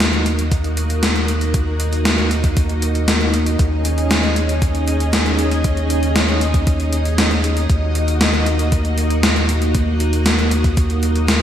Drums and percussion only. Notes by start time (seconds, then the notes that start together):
0.00 snare, closed hi-hat
0.13 closed hi-hat
0.26 closed hi-hat
0.39 closed hi-hat
0.52 kick, closed hi-hat
0.64 closed hi-hat
0.77 closed hi-hat
0.90 closed hi-hat
1.03 snare, closed hi-hat
1.16 closed hi-hat
1.28 closed hi-hat
1.41 closed hi-hat
1.54 kick, closed hi-hat
1.80 closed hi-hat
1.93 closed hi-hat
2.05 snare, closed hi-hat
2.18 closed hi-hat
2.31 closed hi-hat
2.44 kick, closed hi-hat
2.57 kick, closed hi-hat
2.69 closed hi-hat
2.82 closed hi-hat
2.95 closed hi-hat
3.08 snare, closed hi-hat
3.21 closed hi-hat
3.34 closed hi-hat
3.46 closed hi-hat
3.59 kick, closed hi-hat
3.85 closed hi-hat
3.98 closed hi-hat
4.11 snare, closed hi-hat
4.23 closed hi-hat
4.36 closed hi-hat
4.49 closed hi-hat
4.62 kick, closed hi-hat
4.75 closed hi-hat
4.88 closed hi-hat
5.00 closed hi-hat
5.13 snare, closed hi-hat
5.26 closed hi-hat
5.39 closed hi-hat
5.51 closed hi-hat
5.64 kick, closed hi-hat
5.77 closed hi-hat
5.90 closed hi-hat
6.03 closed hi-hat
6.16 snare, closed hi-hat
6.29 closed hi-hat
6.41 closed hi-hat
6.54 kick, closed hi-hat
6.67 kick, closed hi-hat
6.80 closed hi-hat
6.93 closed hi-hat
7.05 closed hi-hat
7.18 snare, closed hi-hat
7.31 snare, closed hi-hat
7.44 closed hi-hat
7.57 closed hi-hat
7.70 kick, closed hi-hat
7.95 closed hi-hat
8.08 closed hi-hat
8.21 snare, closed hi-hat
8.34 closed hi-hat
8.46 closed hi-hat
8.59 closed hi-hat
8.72 kick, closed hi-hat
8.85 closed hi-hat
8.98 closed hi-hat
9.10 closed hi-hat
9.23 snare, closed hi-hat
9.36 closed hi-hat
9.49 closed hi-hat
9.62 closed hi-hat
9.75 kick, closed hi-hat
10.00 closed hi-hat
10.13 closed hi-hat
10.26 snare, closed hi-hat
10.39 closed hi-hat
10.51 closed hi-hat
10.64 kick, closed hi-hat
10.77 kick, closed hi-hat
10.90 closed hi-hat
11.03 closed hi-hat
11.16 closed hi-hat
11.28 snare, closed hi-hat